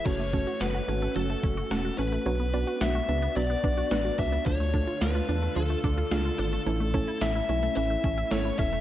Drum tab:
CC |x---------------|----------------|----------------|----------------|
HH |x-xxx-xxx-xxx-xx|x-xxx-xxx-xxx-xx|x-xxx-xxx-xxx-xx|x-xxx-xxx-xxx-xx|
SD |----o-------o---|----o-------o---|----o-------o---|----o-------o---|
BD |o-o-------o-----|----------o---o-|o-o-------o-----|--o-------o---o-|